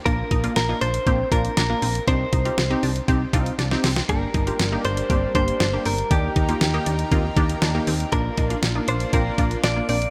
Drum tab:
HH |x-xxx-xxx-xxx-ox|x-xxx-oxx-xxx-ox|x-xxx-xxx-xxx-ox|x-xxx-xxx-xxx-ox|
SD |----o-------o---|----o-------oooo|----o-------o---|----o-------o---|
BD |o-o-----o-o-----|o-o-----o-o-----|o-o-----o-o-----|o-o-----o-o-----|

HH |x-xxx-xxx-xxx-ox|
SD |----o-------o---|
BD |o-o-----o-o-----|